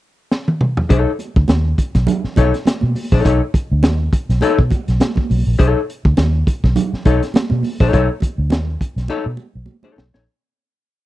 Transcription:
0.32 snare
0.48 high tom
0.61 mid tom
0.77 floor tom
0.89 B1 D#4 A4 C#5, kick, closed hi-hat
1.19 closed hi-hat, muted conga
1.36 D2, kick
1.48 D#2, snare, closed hi-hat, high conga
1.78 kick, closed hi-hat
1.95 B1, kick, snare, closed hi-hat
2.07 closed hi-hat, muted conga, low conga
2.24 muted fingered electric bass stroke, snare
2.36 B1 D#4 A4 C#5, kick, closed hi-hat, muted conga
2.54 snare, closed hi-hat
2.65 snare, closed hi-hat, high conga
2.81 B2, high conga
2.95 open hi-hat, high conga
3.12 A#1 D#4 A4 C#5, kick
3.25 B1 D#4 A4 C#5, kick, closed hi-hat
3.54 kick, closed hi-hat
3.72 D2
3.83 D#2, snare, closed hi-hat, high conga
4.13 kick, closed hi-hat
4.29 B1, snare, closed hi-hat
4.41 D#4 A4 C#5, muted fingered electric bass stroke, closed hi-hat, muted conga
4.59 B2, kick
4.70 kick, closed hi-hat, muted conga
4.88 B1, snare, closed hi-hat
5.00 snare, closed hi-hat, high conga
5.16 kick, high conga
5.30 B1, open hi-hat, high conga
5.47 A#1
5.59 B1 D#4 A4 C#5, kick, closed hi-hat
5.90 closed hi-hat
6.05 D2, kick
6.17 D#2, snare, closed hi-hat, high conga
6.47 kick, closed hi-hat
6.64 B1, kick, snare
6.76 closed hi-hat, muted conga, low conga
6.93 muted fingered electric bass stroke, snare
7.05 B1 D#4 A4 C#5, kick, closed hi-hat, muted conga
7.23 snare, closed hi-hat
7.34 snare, closed hi-hat, high conga
7.50 B2, high conga
7.63 open hi-hat, high conga
7.80 A#1 D#4 A4 C#5, kick
7.93 B1 D#4 A4 C#5, kick, closed hi-hat
8.20 kick, closed hi-hat, muted conga
8.38 D2
8.50 D#2, snare, closed hi-hat, high conga
8.81 kick, closed hi-hat
8.96 B1, snare, closed hi-hat
9.08 D#4 A4 C#5, muted conga
9.26 B2
9.37 muted conga
9.55 B1
9.66 high conga
9.83 D#4 A4 C#5, high conga
9.96 B1, snare, high conga
10.14 A#1 D#4 A4 C#5, snare

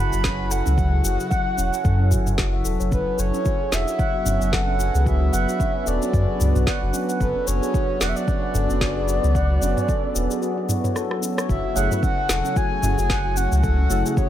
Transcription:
Already playing: F#1 C#3 F#3 E4 B4
0.00 B5
0.13 F#1 F#4, shaker
0.24 C#4, kick, snare, shaker
0.39 F#5
0.50 A4 F#5, shaker
0.66 C#2 C#4, shaker
0.77 F#4, kick, shaker
0.92 G#4
1.04 F#1 F#4, shaker
1.19 F#4, shaker
1.31 F#5, kick, shaker
1.46 F#4
1.57 E1 C#4, shaker
1.72 F#5, shaker
1.84 F#2 A4, kick, shaker
1.99 C#4
2.11 F#1 F#4, mid tom, shaker
2.26 E4, mid tom, shaker
2.38 F#4, kick, snare, shaker
2.53 E5
2.65 E1 A4, shaker
2.80 F#1 C#5, shaker
2.91 F#1 C#4 D4 B4, kick, shaker
3.07 F#5
3.18 F#1 A4 C#5, shaker
3.34 C#4, shaker
3.45 F#4, kick, shaker
3.61 G#4
3.72 E1 F#4 E5, snare, shaker
3.87 F#4, shaker
3.95 B3 F#4 F#5
3.99 kick, shaker
4.14 F#4
4.25 F#1 C#4, mid tom, shaker
4.37 B4
4.41 F#1 F#5, shaker
4.52 A4 F#5, kick, snare, shaker
4.68 C#4
4.79 F#4, shaker
4.95 C#2 G#4, shaker
5.06 F#4 E5, kick, shaker
5.21 F#4
5.33 F#1 F#5, shaker
5.48 F#4, shaker
5.60 C#4, kick, shaker
5.75 F#5
5.86 E1 A4 D5, shaker
6.02 C#4, shaker
6.13 F#2 F#4, kick, shaker
6.28 G#4
6.40 C#2 F#4, mid tom, shaker
6.55 B1 F#4, mid tom, shaker
6.66 F#5, kick, snare, shaker
6.82 F#1 F#4
6.93 C#4, shaker
7.09 F#5, shaker
7.20 F#1 A4 B4, kick, shaker
7.36 C#4
7.47 F#1 F#4 C#5, shaker
7.62 G#4, shaker
7.74 F#4, kick, shaker
7.89 F#4
8.00 E1 D5 F#5, snare, shaker
8.09 E5
8.16 F#4 D5, shaker
8.27 C#4 B4, kick, shaker
8.39 B3
8.43 F#5
8.54 F#1 A4, mid tom, shaker
8.70 F#1 C#4, shaker
8.81 F#4, kick, snare, shaker
8.96 G#4
9.08 F#4, shaker
9.23 C#2 F#4, shaker
9.35 F#5, kick, shaker
9.50 F#4
9.62 F#1 C#4, shaker
9.77 F#5, mid tom, shaker
9.88 A4, kick, shaker
10.04 C#4
10.15 E1 F#4, shaker
10.30 G#4, shaker
10.42 F#4, shaker
10.58 F#4
10.69 E4, mid tom, shaker
10.84 C#5, mid tom, shaker
10.95 A4, cross-stick, shaker
11.11 F#4, cross-stick
11.22 C#4, shaker
11.37 C#5, cross-stick, shaker
11.49 F#1 C#3 F#4 E5, kick, shaker
11.59 F#3
11.64 F#4
11.75 F#1 A3 C#4 E4 G#4 F#5, shaker
11.89 A3 C#4 E4 F#4 B4, mid tom, shaker
12.02 A3 C#4 F#5, kick, shaker
12.11 E4
12.18 F#5
12.29 E1 A4, snare, shaker
12.45 C#4, shaker
12.56 F#4 G#5, kick, shaker
12.72 G#4
12.82 F#1 A3 C#4 E4 F#4 G#4, mid tom, shaker
12.98 F#1 F#4, shaker
13.10 F#5, kick, snare, shaker
13.25 F#4
13.37 C#4 F#5, shaker
13.52 C#2 F#5, shaker
13.63 A4 F#5, kick, shaker
13.79 C#4
13.89 F#1 A3 C#4 E4 F#4 A4, shaker
14.04 A3 C#4 E4 G#4, shaker
14.17 F#4 C#5, kick, shaker

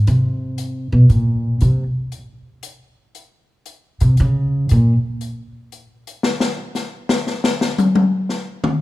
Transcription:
0.07 C3, closed hi-hat
0.58 closed hi-hat
0.92 B2
1.09 A#2, closed hi-hat
1.61 C3, closed hi-hat
2.12 closed hi-hat
2.63 closed hi-hat
3.15 closed hi-hat
3.66 closed hi-hat
4.00 C3, closed hi-hat
4.17 C#3, closed hi-hat
4.69 A#2, closed hi-hat
5.21 closed hi-hat
5.72 closed hi-hat
6.07 closed hi-hat
6.23 snare
6.40 snare
6.75 snare, hi-hat pedal
7.09 snare
7.27 snare
7.44 snare
7.61 snare
7.78 hi-hat pedal, high tom
7.95 high tom
8.29 snare
8.64 mid tom

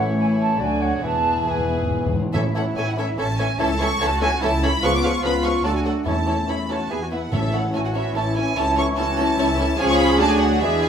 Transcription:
Already playing: A1 A2 E3 A3 C#4 E4 C#5
0.18 E4 C#5 G#5
0.40 A5
0.59 D2 D3 F#3 A3 D4 F#4 D5 G#5
0.82 C#5 F#5
1.02 E1 E2 E3 B3 E4 G#4 B4 A5
1.12 E2
1.19 E2
1.27 E2
1.35 E2
1.43 E2 E3
1.47 E2 B3 E4 B4 G#5
1.59 E2
1.67 E2
1.75 E2
1.83 E2
1.90 E2
1.98 E2
2.06 E2
2.14 E2
2.21 E2
2.33 A1 A2 E3 C#4 E4 A4 C#5 E5
2.55 E3 C#4 A4 C#5 E5 F#5
2.76 A1 E3 C#4 A4 C#5 E5 G#5
2.87 F#5
2.97 E3 C#4 A4 C#5 E5
3.17 A1 E3 C#4 A4 C#5 E5 A5
3.38 E3 C#4 A4 C#5 E5 G#5
3.59 C#2 E3 C#4 E4 A4 C#5 E5 A5
3.79 E3 C#4 A4 C#5 E5 C#6
4.00 C#2 E3 C#4 F#4 A4 C#5 E5 A5
4.21 E3 C#4 A4 C#5 E5 G#5
4.42 C#2 E3 C#4 E4 A4 C#5 E5 A5
4.62 E3 C#4 A4 C#5 E5 B5
4.82 C#2 F3 B3 C#4 F4 G#4 B4 F5 C#6
4.93 D6
5.02 F3 C#4 G#4 B4 F5 C#6
5.22 C#2 F3 B3 C#4 F4 G#4 B4 F5 B5
5.42 F3 C#4 G#4 B4 F5 C#6
5.64 D2 F#3 A3 D4 F#4 A4 D5 A5
5.74 G#5
5.85 F#3 A3 F#4 A4 D5 F#5
6.05 E2 E3 A3 C#4 E4 A4 C#5 A5
6.26 E3 C#4 E4 A4 C#5
6.47 E2 E3 C#4 E4 A4 C#5 B5
6.68 E3 C#4 E4 F#4 A4 C#5 A5
6.90 E2 E3 B3 E4 G#4 B4 E5 G#5
7.02 F#4
7.11 E3 B3 E4 B4 E5 F#5
7.31 A1 A2 E3 C#4 E4 A4 C#5 E5
7.53 C#4 E4 A4 C#5 F#5
7.73 A1 C#4 E4 F#4 A4 C#5 G#5
7.85 F#5
7.94 C#4 E4 A4 C#5 E5
8.15 A1 C#4 E4 A4 C#5 A5
8.35 C#4 E4 A4 C#5 G#5
8.56 C#2 C#4 E4 A4 C#5 A5
8.76 C#4 E4 A4 C#5 C#6
8.97 C#2 C#4 E4 F#4 A4 C#5 A5
9.17 C#4 E4 A4 C#5
9.38 C#2 C#4 E4 A4 C#5
9.58 C#4 E4 A4 C#5
9.79 C#2 F3 C#4 F4 G#4 C#5 G#5
9.89 C#6
9.99 B5
10.18 D2 F#3 A3 D4 F#4 D5 A5
10.29 G#5
10.40 C#5 F#5
10.61 E2 E3 G#3 D4 G#4 B4 E5
10.83 G#5

